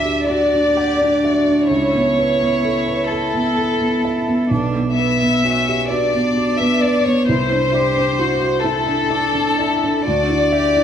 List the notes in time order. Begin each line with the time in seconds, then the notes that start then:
Already playing: D2 D4 F#4 A4 D5 E5
0.05 G4 D5
0.27 D4 F#4 D5
0.53 D4
0.76 G4 F#5
1.00 D4
1.23 F#4 E5
1.48 D4
1.68 C#2 E4 A4 C#5
1.93 B3 A5
2.17 B4 A5
2.40 B3 A4
2.62 A4 E5
2.86 B4 A5
3.09 A4
3.33 B3 A5
3.58 A4
3.80 B3 A4
4.03 E5 A5
4.26 B3 A5
4.49 B1 D4 B4
4.75 B3
4.95 B3 E5
4.99 B4
5.20 B3 B4
5.43 C#4 F#4 F#5
5.66 G4 B5
5.89 D4 F#4 B4 D5
6.12 B3 B5
6.35 F#4 B5
6.58 B3 B4 E5
6.81 D5 B5
7.04 B3 C#5 B5
7.27 C2 C4 E4 C5
7.52 D4
7.74 G4 D5
7.95 C4 D4
8.18 E4 F#4
8.41 F#4
8.61 C4 E4 A4
8.87 D4
9.10 D4 E4 C5
9.34 C4 D4
9.58 E4 C5 D5
9.83 D4 C5
10.05 D2 D4 F#4 D5
10.29 E4
10.52 G4 E5
10.76 D4 E4